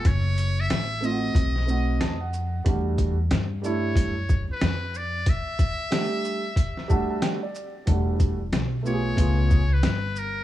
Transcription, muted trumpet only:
X:1
M:4/4
L:1/16
Q:"Swing 16ths" 1/4=92
K:Edor
V:1 name="Muted trumpet"
c3 e3 ^d8 z2 | z6 c4- c B3 d2 | e12 z4 | z6 c4- c B3 ^A2 |]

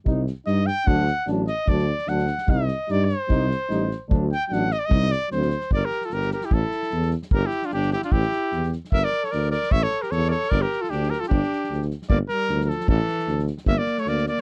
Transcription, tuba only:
X:1
M:2/4
L:1/8
Q:"Swing 16ths" 1/4=150
K:none
V:1 name="Tuba" clef=bass
C,,2 G,,2 | D,,2 A,,,2 | D,,2 D,,2 | C,,2 G,,2 |
C,,2 A,,,2 | D,,2 A,,,2 | C,,2 D,,2 | G,,, z G,,,2 |
A,,, z E,,2 | G,,, z G,,,2 | A,,, z E,,2 | G,,, z D,,2 |
A,,, z E,,2 | G,,, z D,,2 | G,,, z D,,2 | G,,, z D,,2 |
A,,, z D,,2 | G,,, z D,,2 |]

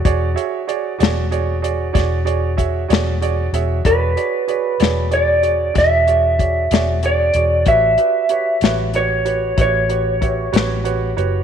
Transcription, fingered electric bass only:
X:1
M:12/8
L:1/8
Q:3/8=63
K:Emix
V:1 name="Fingered electric bass" clef=bass
E,,, z2 E,,,3 E,,,3 E,,,2 E,,, | E,,, z2 E,,,3 E,,,3 E,,,2 E,,, | A,,, z2 A,,,3 A,,,3 A,,,2 F,,, |]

